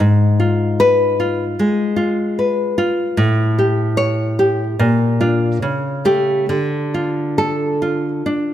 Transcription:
nylon-string guitar
0.00 G#2
0.40 F4
0.80 B4
1.20 F4
1.59 G#3
1.96 F4
2.39 B4
2.78 F4
3.17 A2
3.59 G4
3.97 C#5
4.39 G4
4.79 A#2
5.21 D4 F4
5.62 C#3
6.05 A3 G4
6.49 D3
6.94 F4
7.38 A4
7.82 F4
8.26 D4

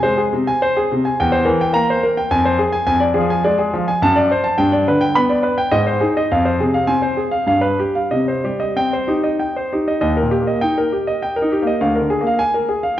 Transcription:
grand piano
0.03 G#3 C5
0.18 G#4
0.33 C3
0.47 G#5
0.62 C5
0.77 G#4
0.92 C3
1.05 G#5
1.20 E2 G5
1.32 C5
1.45 E3 A#4
1.61 G5
1.73 A#3 A#5
1.90 C5
2.03 A#4
2.17 G5
2.31 F2 G#5
2.45 C5
2.59 G#4
2.72 G#5
2.86 F2 G#5
3.00 D5
3.14 F3 G#4
3.30 G#5
3.44 G#3 D5
3.58 G#4
3.73 F3
3.88 G#5
4.02 F#2 A5
4.16 D5
4.31 C5
4.44 A5
4.58 G2 G5
4.72 D5
4.88 D3 B4
5.01 G5
5.15 B3 B5
5.29 D5
5.43 B4
5.58 G5
5.71 G#2 D#5
5.87 C5
6.01 D#4 G#4
6.17 D#5
6.31 F2 F5
6.45 C5
6.60 C3 G#4
6.74 F5
6.87 C4 G#5
7.02 C5
7.17 G#4
7.32 F5
7.47 G2 F5
7.61 B4
7.79 G4
7.95 F5
8.11 C3 D#5
8.28 C5
8.44 G3 G4
8.60 D#5
8.76 C4 G5
8.93 C5
9.08 D#4 G4
9.24 D#5
9.39 G5
9.56 C5
9.72 D#4 G4
9.88 D#5
10.01 D#2 D#5
10.17 A#4
10.22 A#2
10.31 G4
10.41 A#3
10.47 D#5
10.61 D#4 G5
10.78 A#4
10.92 G4
11.07 D#5
11.23 G5
11.36 A#4
11.42 D#4
11.52 G4
11.62 A#3
11.67 D#5
11.81 D2 F5
11.95 A#4
12.01 D3
12.10 G#4
12.21 A#3
12.27 F5
12.39 G#5
12.54 A#4
12.69 G#4
12.83 F5

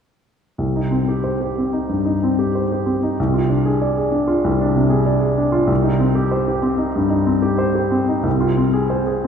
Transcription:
grand piano
0.58 C2
0.76 D#4
0.91 C4
1.08 G4
1.24 C5
1.41 G4
1.58 C4
1.73 D#4
1.89 G2
2.05 D#4
2.23 C4
2.39 G4
2.55 C5
2.72 G4
2.86 C4
3.03 D#4
3.20 C2
3.34 F4
3.50 D4
3.65 G#4
3.82 D5
3.97 G#4
4.12 D4
4.27 F4
4.44 C2
4.61 D4
4.75 C3
4.90 G#4
5.06 D5
5.21 G#4
5.38 D4
5.52 F4
5.67 C2
5.83 D#4
6.00 C4
6.15 G4
6.31 C5
6.48 G4
6.62 C4
6.78 D#4
6.96 G2
7.09 D#4
7.26 C4
7.42 G4
7.58 C5
7.75 G4
7.91 C4
8.09 D#4
8.23 C2
8.40 F4
8.57 C4
8.73 G#4
8.90 C5
9.07 G#4

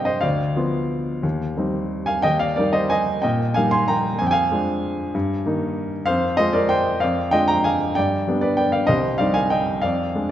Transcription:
grand piano
Already playing: G2 C3 C4 G4 C5 D5 D#5 F5 G5
0.05 C5 D#5
0.21 D2 D5 F5
0.56 F3 B3 F4
1.23 D#2
1.57 G3 C4 D#4
2.06 F5 G#5
2.22 D#2 D#5 G5
2.39 D5 F5
2.56 G3 A#3 D#4 A#4 D5
2.73 C5 D#5
2.90 D#5 G#5
3.22 A#2 D#5 G5
3.54 G3 A#3 D#4 F5 G#5
3.71 G#5 C6
3.88 G5 A#5
4.19 F2 G#5
4.27 G5
4.31 F5 G#5
4.52 F3 G#3 D4
5.15 G2
5.46 D#3 A#3 D#4
6.06 F2 C5 F5
6.37 G#3 C4 F4 C5 D#5
6.53 A#4 D5
6.69 C5 G5
7.00 F2 D5 F5
7.31 G#3 D4 F4 D#5 G5
7.48 G5 A#5
7.64 F5 G#5
7.95 G2 D5 G5
8.27 G3 B3 D4
8.41 B4 D5
8.57 D5 G5
8.72 D5 F5
8.87 C2 C5 D#5
9.18 G3 C4 D#4 D5 F5
9.34 F5 G#5
9.50 D#5 G5
9.82 F2 D5 F5
10.15 G#3 D4

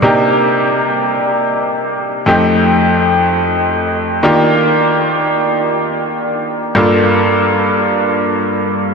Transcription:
grand piano
0.02 C3 A#3 D4 D#4 G4
2.26 F2 A3 C4 D#4 G4
4.23 D#3 A#3 D4 F4 G4
6.75 G2 A#3 D4 F4 A4

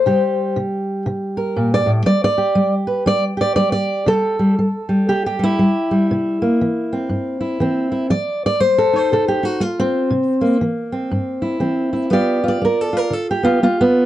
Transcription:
steel-string acoustic guitar
Already playing: C5
0.06 C3 G3 G4
0.56 C3
1.06 C3
1.37 A#4
1.56 A#2
1.74 D5
1.86 A2
2.06 G3 D5
2.24 D5
2.38 G4
2.55 G3
2.87 B4
3.06 G3 D5
3.37 G4 D5
3.56 G3 D5
3.72 D5
4.06 C3 G3 A4
4.39 G3
4.59 G3
4.89 G3
5.08 C3 G4
5.26 G4
5.39 G3
5.43 E4
5.59 G3
5.91 G3
6.11 C3
6.42 A#3
6.61 E3
6.93 C4
7.09 G2
7.41 E4
7.60 E3 C4
7.92 E4
8.10 F3 D5
8.46 D5
8.60 A3 C5
8.78 A4
8.93 D#4 C5
9.12 C3 A4
9.28 G4
9.43 D#4 F#4
9.60 A3 F4
9.79 C4
10.10 C3
10.41 A#3
10.61 E3
10.92 C4
11.11 G2
11.42 E4
11.60 E3 C4
11.93 E4
12.10 G3 B3 F4 G4 D5
12.44 F4
12.48 D5
12.62 B3 A#4
12.81 A4
12.93 F4 A#4
13.10 D3 A4
13.31 G4
13.43 B3 F4
13.63 B3 F4
13.81 B3

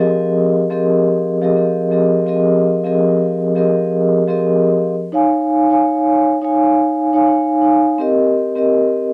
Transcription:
vibraphone
0.00 F3 C4 G4 G#4 A#4 D#5
0.70 F3 C4 G4 G#4 A#4 D#5
1.41 F3 C4 G4 G#4 A#4 D#5
1.55 F3 C4 G4 G#4 A#4 D#5
1.91 F3 C4 G4 G#4 A#4 D#5
2.26 F3 C4 G4 G#4 A#4 D#5
2.84 F3 C4 G4 G#4 A#4 D#5
3.56 F3 C4 G4 G#4 A#4 D#5
4.28 F3 C4 G4 G#4 A#4 D#5
5.12 D#4 C#5 F5 G#5
5.70 D#4 C#5 F5 G#5
6.42 D#4 C#5 F5 G#5
7.13 D#4 C#5 F5 G#5
7.26 D#4 C#5 F5 G#5
7.61 D#4 C#5 F5 G#5
7.98 C4 G4 A#4 D#5
8.55 C4 G4 A#4 D#5

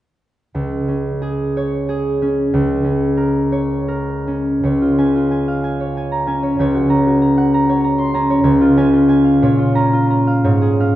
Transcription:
harp
0.55 C#2
0.88 C#4
1.22 G#4
1.57 C#5
1.89 G#4
2.22 C#4
2.54 C#2
2.84 C#4
3.17 A#4
3.52 C#5
3.88 A#4
4.27 C#4
4.63 C#2 C#5
4.82 F4
4.98 C#4 G#5
5.15 F4
5.31 G#5
5.48 F5
5.64 G#5
5.80 C#5
5.97 G#5
6.12 A#5
6.27 C#4 G#5
6.43 C#5
6.59 C#2 C#5
6.74 F#4
6.89 C#4 A#5
7.07 F#4
7.22 A#5
7.38 F#5
7.54 A#5
7.69 C#5
7.84 A#5
7.98 C6
8.14 C#4 A#5
8.30 C#5
8.44 C#2 C#5
8.61 F4
8.77 C#4 G#5
8.93 F4
9.09 G#5
9.25 F5
9.42 A#2 C#5
9.58 F4
9.75 C#4 A#5
9.93 F4
10.10 A#5
10.27 F5
10.44 G#2 C#5
10.61 G#4
10.80 C#4 F5

